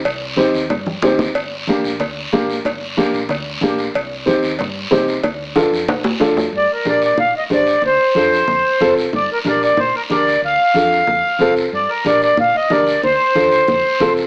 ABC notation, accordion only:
X:1
M:4/4
L:1/8
Q:1/4=185
K:Gm
V:1 name="Accordion"
z8 | z8 | z8 | z8 |
z8 | d B d d f e d2 | c6- c z | d B d d c B d2 |
f6- f z | d B d d f e d2 | c6- c z |]